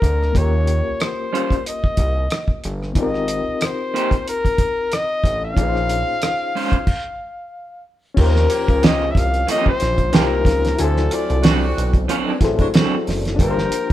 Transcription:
Already playing: C4 C#4 F4 G4 A#4
0.02 D2, kick, cross-stick, closed hi-hat
0.23 cross-stick
0.32 D#2 A#3 C#4, kick, closed hi-hat
0.37 F4 G4 C#5
0.41 A#4
0.67 closed hi-hat
0.87 C2
1.00 C5, muted clean electric guitar stroke, cross-stick, closed hi-hat
1.33 G3 C#4 F4 C5, closed hi-hat
1.50 kick, closed hi-hat
1.66 D#5, closed hi-hat
1.84 kick
1.97 C2, kick, cross-stick, closed hi-hat
2.30 cross-stick, closed hi-hat
2.48 kick
2.64 G1, cross-stick, closed hi-hat
2.83 cross-stick
2.93 G#1 B3 D#4, kick, closed hi-hat
2.97 C4 F4 G4 D#5
3.02 A#4
3.14 cross-stick
3.28 closed hi-hat
3.48 A1
3.61 C5, muted clean electric guitar stroke, cross-stick, closed hi-hat
3.94 A#3 D#4 G4 C5, closed hi-hat
4.11 kick, closed hi-hat
4.28 A#4, closed hi-hat
4.45 kick, closed hi-hat
4.58 kick, cross-stick, closed hi-hat
4.92 D#5, cross-stick, closed hi-hat
5.24 A1, kick, cross-stick, closed hi-hat
5.45 F5
5.54 A#1 C#4 D#4, kick, closed hi-hat
5.58 F4 G#4
5.62 B4
5.69 C5
5.76 cross-stick
5.89 closed hi-hat
6.09 A#2
6.22 muted clean electric guitar stroke, cross-stick, closed hi-hat
6.55 G#3 C#4 F4 C5, open hi-hat
6.72 kick, closed hi-hat
6.87 kick, crash
8.14 D#2 F3 C#4 F4 G4, kick, crash
8.19 G4 A#4
8.23 C5
8.36 snare
8.50 A#3 C#4 G4, closed hi-hat
8.68 C#2, kick, closed hi-hat
8.83 F3 A#3 C#4 G4 D#5, snare, closed hi-hat
9.11 E5
9.15 C2 F5, kick, closed hi-hat
9.34 closed hi-hat
9.47 F3 A#3 C#4 G4 D#5, closed hi-hat
9.66 C5, kick
9.80 A#1, snare, closed hi-hat
9.98 kick, closed hi-hat
10.12 C2 D#3 A#3 C4 D#4 F4 G4 A#4, snare, closed hi-hat
10.17 A#4 C5
10.45 C#2, kick, snare, closed hi-hat
10.65 snare, closed hi-hat
10.76 F#3 D4 E4 F#4, closed hi-hat
10.80 D2 A4 G#5
10.84 C5
10.97 snare
11.10 A3 C4 F4, closed hi-hat
11.14 D5
11.30 C2, closed hi-hat
11.43 F#3 C4 D4 F#4, snare, closed hi-hat
11.78 B1, closed hi-hat
11.94 kick, closed hi-hat
12.08 F#3 C4 D4 F#4, closed hi-hat
12.26 G#3 B3 D#4
12.40 A1 E4 F#4 G#4 A4, kick, snare, closed hi-hat
12.44 C5
12.59 F#3 A3 D4, kick, closed hi-hat
12.74 F#3 C4 D4 F#4, snare, closed hi-hat
13.07 F#1, snare, open hi-hat
13.25 snare, closed hi-hat
13.36 G1 F3 A#3 D4 F4 G5, kick, closed hi-hat
13.40 G4 A#4
13.44 B4
13.51 C5
13.58 snare
13.72 closed hi-hat

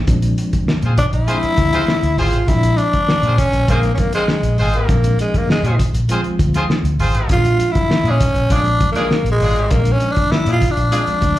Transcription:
0.07 A#1 F3 G#3 C4 D4, kick, closed hi-hat
0.22 closed hi-hat
0.38 closed hi-hat
0.53 muted fingered electric bass stroke, kick, closed hi-hat
0.67 muted fingered electric bass stroke, snare
0.82 A#2 C4 F4 G#4 C5, closed hi-hat
0.98 D4, kick, closed hi-hat
1.13 A#1 E4, closed hi-hat
1.27 F3 G#3 C4 D4 F4 G#4 C5, closed hi-hat
1.43 muted fingered electric bass stroke, closed hi-hat
1.57 D2, kick, closed hi-hat
1.73 C4 F4 G#4 C5, snare, closed hi-hat
1.88 snare
2.03 D2, closed hi-hat
2.17 G#1 C4 F4 G#4 C5, open hi-hat
2.32 A1, closed hi-hat
2.47 A#1 F3 G#3 C4 D4 E4, kick, closed hi-hat
2.63 closed hi-hat
2.77 D4, closed hi-hat
2.93 muted fingered electric bass stroke, kick, closed hi-hat
3.09 muted fingered electric bass stroke, snare
3.23 A#2 C4 F4 G#4 C5, closed hi-hat
3.38 C#4, kick, closed hi-hat
3.53 A#1, closed hi-hat
3.68 A#1 F3 G#3 A#3 C4 D4 F4 G#4 C5, kick, closed hi-hat
3.83 closed hi-hat
3.94 C#4, kick, closed hi-hat
3.99 A#3
4.13 G#3 C4 F4 G#4 C5, closed hi-hat
4.28 snare
4.43 A#1, closed hi-hat
4.58 G#1 G#3 C4 F4 G#4 C5, open hi-hat
4.73 A1 A#3, closed hi-hat
4.88 A#1 F3 G#3 C4 D4, kick, closed hi-hat
5.04 closed hi-hat
5.19 G#3, closed hi-hat
5.34 A#3, muted fingered electric bass stroke, kick, closed hi-hat
5.48 G#3, muted fingered electric bass stroke, snare
5.63 A#2 C4 F4 G#4 C5, closed hi-hat
5.79 kick, closed hi-hat
5.93 A#1, closed hi-hat
6.08 F3 G#3 C4 F4 G#4 C5, closed hi-hat
6.23 muted fingered electric bass stroke, closed hi-hat
6.39 D2, kick, closed hi-hat
6.54 C4 F4 G#4 C5, snare, closed hi-hat
6.70 snare
6.83 D2, closed hi-hat
6.98 G#1 C4 F4 G#4 C5, open hi-hat
7.13 A1, closed hi-hat
7.29 A#1 F3 G#3 C4 D4 F4, kick, closed hi-hat
7.45 closed hi-hat
7.60 closed hi-hat
7.71 E4, closed hi-hat
7.75 muted fingered electric bass stroke, kick
7.89 muted fingered electric bass stroke, snare
8.04 A#2 G#3 D4 F4 G#4, closed hi-hat
8.11 C#4
8.21 kick, closed hi-hat
8.35 A#1, closed hi-hat
8.50 A#1 F3 G#3 C4 D4 F4 G#4, kick, closed hi-hat
8.65 closed hi-hat
8.81 kick, closed hi-hat
8.92 A#3 D4 F4, closed hi-hat
8.96 G#3 G#4, snare
9.11 snare
9.24 A#1, closed hi-hat
9.31 G#3
9.40 G#1 G#3 D4 F4 G#4, open hi-hat
9.54 A1, closed hi-hat
9.71 A#1 F3 G#3 A#3 C4 D4, kick, closed hi-hat
9.85 closed hi-hat
9.92 C#4
10.00 closed hi-hat
10.11 D4
10.16 muted fingered electric bass stroke, kick, closed hi-hat
10.32 E4, muted fingered electric bass stroke, snare
10.46 A#2 G#3 D4 F4 G#4, closed hi-hat
10.52 F4
10.62 kick, closed hi-hat
10.71 D4
10.77 A#1, closed hi-hat
10.91 F3 G#3 C4 D4 F4 G#4, closed hi-hat
11.07 muted fingered electric bass stroke, closed hi-hat
11.22 D2, kick, closed hi-hat

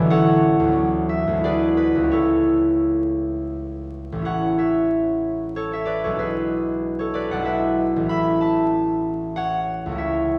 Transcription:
Already playing: A1 E3 D4 B4 D5 G#5 B5
0.01 A3
0.06 C#4
0.10 A4 C#5 F#5
0.60 D2
0.64 F#3 B3
0.72 D4
1.09 E5
1.27 D2 G#3
1.35 B3
1.39 E4
1.44 G#4 B4 D5
1.77 B4
1.95 C#2
1.99 A3
2.03 C#4
2.11 E4 A4 C#5
4.12 A1 A3
4.19 C#4 E4
4.25 C#5 F#5
4.58 C#5 E5
5.56 A4 C#5
5.73 C#5 E5
5.85 B4 D5
6.04 B1 A4 C#5
6.09 G#3 D4
6.15 E4 B4
6.20 G#4
6.99 A4 C#5
7.14 B4 D5
7.31 B1 D5 F#5
7.36 G#3 D4
7.42 E4 E5
7.47 B4
7.96 A1 A3
8.03 C#4 E4
8.09 E5 B5
8.41 E5 A5
9.36 C#5 F#5
9.86 C#2 A3
9.92 C#4 E4
9.98 C#5 E5

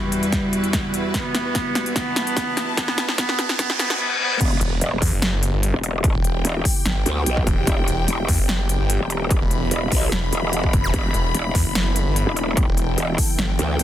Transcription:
Already playing: E2 E3 G3 E4 F#4 B4, riser
0.12 closed hi-hat
0.23 closed hi-hat
0.32 kick, snare, closed hi-hat
0.53 closed hi-hat
0.64 closed hi-hat
0.73 kick, snare, closed hi-hat
0.94 closed hi-hat
1.14 B3, kick, snare, closed hi-hat
1.35 snare, closed hi-hat
1.55 kick, snare, closed hi-hat
1.75 snare, closed hi-hat
1.86 closed hi-hat
1.96 B3, kick, snare, closed hi-hat
2.03 A5
2.16 snare, closed hi-hat
2.27 closed hi-hat
2.37 kick, snare, closed hi-hat
2.57 snare, closed hi-hat
2.77 B3, kick, snare, closed hi-hat
2.88 snare
2.98 snare, closed hi-hat
3.08 snare
3.18 B3, kick, snare, closed hi-hat
3.29 snare
3.39 snare, closed hi-hat
3.49 snare, closed hi-hat
3.59 B3, kick, snare, closed hi-hat, reverse cymbal
3.70 snare
3.79 B3, snare, closed hi-hat
3.90 snare, closed hi-hat
4.00 B3
4.20 B3
4.41 E1 E3 B3 E4 G4, kick, closed hi-hat, crash, impact
4.61 E1, closed hi-hat
4.81 E1, closed hi-hat
5.02 E2, kick, open hi-hat
5.13 F#1
5.22 snare, closed hi-hat
5.43 closed hi-hat
5.53 G1
5.63 closed hi-hat
5.74 E1
5.83 closed hi-hat
6.04 G5, kick, closed hi-hat
6.15 E1
6.24 closed hi-hat
6.45 E1, closed hi-hat
6.65 kick, open hi-hat
6.86 G1, snare, closed hi-hat
7.06 D2, closed hi-hat
7.26 B1, closed hi-hat
7.37 kick
7.47 E1, kick, closed hi-hat
7.67 E1, kick, closed hi-hat
7.88 E1, closed hi-hat
8.08 E1, closed hi-hat
8.28 E2, kick, open hi-hat
8.39 F#1
8.49 snare, closed hi-hat
8.69 closed hi-hat
8.80 G1
8.90 closed hi-hat
9.00 E1
9.10 closed hi-hat
9.31 B5, kick, closed hi-hat
9.41 E1
9.51 closed hi-hat
9.71 E1, closed hi-hat
9.92 B1, kick, open hi-hat
10.12 E1, snare, closed hi-hat
10.33 E1, closed hi-hat
10.53 closed hi-hat
10.64 kick
10.73 F#1, kick, closed hi-hat
10.84 E1, zap
10.94 E1 A4, kick, closed hi-hat
11.14 E1, closed hi-hat
11.35 E1, closed hi-hat
11.55 E2, kick, open hi-hat
11.66 F#1
11.75 snare, closed hi-hat
11.96 closed hi-hat
12.06 G1
12.16 closed hi-hat
12.27 E1
12.37 closed hi-hat
12.57 G5, kick, closed hi-hat
12.68 E1
12.77 closed hi-hat
12.98 E1, closed hi-hat
13.18 kick, open hi-hat
13.39 G1, snare, closed hi-hat
13.59 D2, closed hi-hat
13.79 B1, closed hi-hat

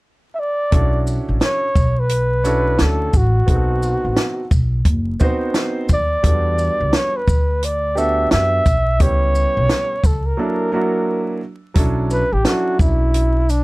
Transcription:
0.35 E5
0.40 D5
0.71 B1 C#4 D4 E4 F#4 A4, kick, closed hi-hat
1.07 shaker
1.29 A1
1.41 C#5, snare, closed hi-hat
1.76 B1, kick, shaker
2.00 B4
2.09 closed hi-hat
2.44 C#4 D4 E4 F#4 A4, closed hi-hat, shaker
2.79 D2 A4, snare, closed hi-hat
3.14 A1 F#4, kick, shaker
3.46 B1 B3 C4 D#4 F#4 G#4, kick, closed hi-hat
3.56 A4
3.83 shaker
4.04 A1
4.16 snare, closed hi-hat
4.51 B1, kick, shaker
4.85 F#1, kick, closed hi-hat
5.20 B3 C4 D#4 F#4 C5, kick, shaker
5.54 snare, closed hi-hat
5.89 D#2, kick, shaker
5.93 D5
6.23 E2 G3 B3 D4 F#4 A4, kick, closed hi-hat
6.58 shaker
6.80 C#2
6.93 C#5, snare, closed hi-hat
7.17 B4
7.28 D2, kick, shaker
7.62 D5, closed hi-hat
7.95 B3 D4 F#4 G4 A4 E5, shaker
8.31 F#2 E5, snare, closed hi-hat
8.66 B1, kick, closed hi-hat, shaker
9.00 C#2 G3 B3 C#4 E4 G4 C#5, kick, closed hi-hat
9.35 shaker
9.57 B1
9.69 snare, closed hi-hat
10.04 C#2 A4, kick, shaker
10.26 A#4
10.37 F#3 A#3 D4 E4 A4
10.72 F#3 A#3 D4 E4 F#4
11.74 B1 F#3 C#4 D4 E4 A4, kick, closed hi-hat
12.11 B4, shaker
12.33 A1 G4
12.45 F#3 C#4 D4 E4 F#4 A4, snare, closed hi-hat
12.79 B1 E4, kick, shaker
13.14 closed hi-hat
13.49 D4, closed hi-hat, shaker

